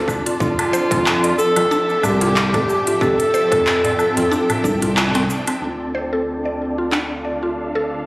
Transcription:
Already playing: string section D3 D4 A4 F5 A5, tine electric piano C4 F4 A4, synth texture D4 D5
0.08 kick, cabasa, low woodblock
0.26 synth pluck F4, closed hi-hat, cabasa
0.40 analog synth bass F2, string section F3, synth pluck D4, clarinet F4, kick, cabasa
0.59 closed hi-hat, darbuka tek, low woodblock
0.72 string section C4, synth pluck C5, cabasa
0.90 analog synth bass F2, tine electric piano C4 F4 A4, synth pluck A4, kick, closed hi-hat, darbuka tek, cabasa
1.02 string section E5
1.06 clap, cabasa, low woodblock
1.24 synth pluck D5, closed hi-hat, darbuka ka, cabasa
1.38 clarinet A4, cabasa
1.56 analog synth bass F2, synth pluck F4, closed hi-hat, darbuka ka, cabasa, low woodblock
1.69 synth pluck D4, string section G5, cabasa
1.89 darbuka ka, cabasa
2.03 analog synth bass C2, clarinet G4, synth pluck D5, darbuka dum, cabasa, low woodblock
2.21 synth pluck F4, closed hi-hat, darbuka ka, darbuka tek, cabasa
2.36 clap, cabasa
2.53 analog synth bass F2, synth pluck A4, kick, closed hi-hat, darbuka dum, cabasa, low woodblock
2.68 darbuka ka, darbuka tek, cabasa
2.87 synth pluck F4, closed hi-hat, cabasa
3.01 analog synth bass F2, synth pluck D4, clarinet A4, kick, cabasa, low woodblock
3.20 closed hi-hat, cabasa
3.34 synth pluck C5, cabasa
3.51 analog synth bass F2, tine electric piano C4 F4 A4, synth pluck A4, kick, closed hi-hat, darbuka tek, cabasa, low woodblock
3.67 clap, cabasa
3.84 synth pluck D5, closed hi-hat, darbuka ka, darbuka tek, darbuka dum, cabasa
3.99 cabasa, low woodblock
4.15 analog synth bass F2, tine electric piano C4 F4, synth pluck F4, closed hi-hat, darbuka ka, cabasa
4.19 tine electric piano A4
4.32 synth pluck D4, cabasa
4.49 closed hi-hat, darbuka dum, cabasa, low woodblock
4.64 analog synth bass C2, synth pluck D4, kick, cabasa
4.82 synth pluck F4, closed hi-hat, darbuka dum, cabasa
4.97 synth pluck F4, clap, cabasa, low woodblock
5.14 analog synth bass C2, synth pluck C4, closed hi-hat, cabasa
5.30 cabasa
5.47 synth pluck C4, closed hi-hat, cabasa, low woodblock
5.60 analog synth bass D2, string section D3, tine electric piano C4 F4 A4, synth texture D4 D5, synth pluck D4
5.69 string section D4
5.95 synth pluck C5
6.13 synth pluck A4
6.41 string section F5
6.45 synth pluck D5
6.78 synth pluck F4
6.86 string section A5
6.92 synth pluck D4, clap
7.25 synth pluck D5
7.43 synth pluck F4
7.75 synth pluck A4

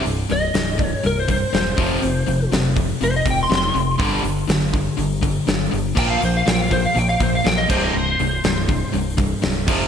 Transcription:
0.05 picked electric bass C1, distorted electric guitar C2 G2, open hi-hat
0.29 picked electric bass C1, distorted electric guitar C2 G2, lead electric guitar D#5, open hi-hat
0.54 picked electric bass C1, distorted electric guitar C2 G2, snare, open hi-hat
0.78 distorted electric guitar C2 G2, kick, open hi-hat
0.85 lead electric guitar C#5
1.03 picked electric bass C1, distorted electric guitar C2 G2, lead electric guitar A#4, open hi-hat
1.19 lead electric guitar C5
1.28 distorted electric guitar C2 G2, lead electric guitar C5, kick, open hi-hat
1.53 picked electric bass E1, distorted electric guitar C2 G2, lead electric guitar C5, snare, open hi-hat
1.77 picked electric bass F1, distorted electric guitar F2 C3 F3, kick, open hi-hat
2.02 picked electric bass F1, distorted electric guitar F2 C3, open hi-hat
2.26 picked electric bass F1, distorted electric guitar F2 C3, open hi-hat
2.52 picked electric bass F1, distorted electric guitar F2 C3, snare, open hi-hat
2.76 distorted electric guitar F2 C3, kick, open hi-hat
3.01 picked electric bass F1, distorted electric guitar F2 C3, lead electric guitar C5, open hi-hat
3.16 lead electric guitar D#5
3.25 picked electric bass F1, distorted electric guitar F2 C3, kick, open hi-hat
3.30 lead electric guitar G5
3.43 lead electric guitar C6
3.50 picked electric bass F1, distorted electric guitar F2 C3, snare, open hi-hat
3.55 lead electric guitar C6
3.74 picked electric bass F1, distorted electric guitar F2 C3, open hi-hat
3.98 picked electric bass G1, distorted electric guitar G2 D3 G3, kick, open hi-hat
4.24 picked electric bass G1, distorted electric guitar G2 D3, open hi-hat
4.47 picked electric bass G1, distorted electric guitar G2 D3, snare, open hi-hat
4.73 distorted electric guitar G2 D3, kick, open hi-hat
4.97 picked electric bass G1, distorted electric guitar G2 D3, open hi-hat
5.21 distorted electric guitar G2 D3, kick, open hi-hat
5.47 picked electric bass G1, distorted electric guitar G2 D3, snare, open hi-hat
5.71 picked electric bass G1, distorted electric guitar G2 D3, open hi-hat
5.95 picked electric bass A#1, distorted electric guitar A#2 F3 A#3, lead electric guitar G5, kick, crash
6.10 lead electric guitar F5
6.22 picked electric bass A#1, distorted electric guitar A#2 F3, lead electric guitar C5, open hi-hat
6.37 lead electric guitar F5
6.46 picked electric bass A#1, distorted electric guitar A#2 F3, lead electric guitar G5, snare, open hi-hat
6.61 lead electric guitar F5
6.71 distorted electric guitar A#2 F3, lead electric guitar C5, kick, open hi-hat
6.85 lead electric guitar F5
6.95 picked electric bass A#1, distorted electric guitar A#2 F3, lead electric guitar G5, open hi-hat
7.09 lead electric guitar F5
7.20 picked electric bass A#1, distorted electric guitar A#2 F3, lead electric guitar C5, kick, open hi-hat
7.35 lead electric guitar F5
7.44 picked electric bass A#1, distorted electric guitar A#2 F3, lead electric guitar G5, snare, open hi-hat
7.58 lead electric guitar D#5
7.69 picked electric bass C1, distorted electric guitar C2 G2 C3, lead electric guitar C5, kick, crash
7.84 lead electric guitar D#5
7.94 picked electric bass C1, distorted electric guitar C2 G2, lead electric guitar C5
8.19 picked electric bass C1, distorted electric guitar C2 G2, open hi-hat
8.44 picked electric bass C1, distorted electric guitar C2 G2, snare, open hi-hat
8.68 distorted electric guitar C2 G2, kick, open hi-hat
8.93 picked electric bass C1, distorted electric guitar C2 G2, open hi-hat
9.17 distorted electric guitar C2 G2, kick, open hi-hat
9.42 picked electric bass C1, distorted electric guitar C2 G2, snare, open hi-hat
9.67 picked electric bass F1, distorted electric guitar F2 C3 F3, kick, crash

